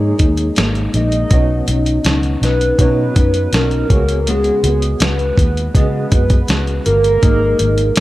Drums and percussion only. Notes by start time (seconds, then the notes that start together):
0.19 kick, closed hi-hat
0.37 closed hi-hat
0.56 snare, closed hi-hat
0.75 closed hi-hat
0.94 closed hi-hat
1.12 closed hi-hat
1.31 kick, closed hi-hat
1.68 closed hi-hat
1.86 closed hi-hat
2.04 snare, closed hi-hat
2.23 closed hi-hat
2.43 snare, closed hi-hat
2.61 closed hi-hat
2.79 kick, closed hi-hat
3.16 kick, closed hi-hat
3.34 closed hi-hat
3.53 snare, closed hi-hat
3.71 closed hi-hat
3.90 kick, closed hi-hat
4.09 closed hi-hat
4.27 closed hi-hat
4.44 closed hi-hat
4.64 closed hi-hat
4.82 closed hi-hat
5.00 snare, closed hi-hat
5.19 closed hi-hat
5.38 kick, closed hi-hat
5.57 closed hi-hat
5.75 kick, closed hi-hat
6.12 kick, closed hi-hat
6.30 kick, closed hi-hat
6.48 snare, closed hi-hat
6.67 closed hi-hat
6.86 closed hi-hat
7.04 closed hi-hat
7.23 kick, closed hi-hat
7.59 closed hi-hat
7.78 closed hi-hat
7.96 closed hi-hat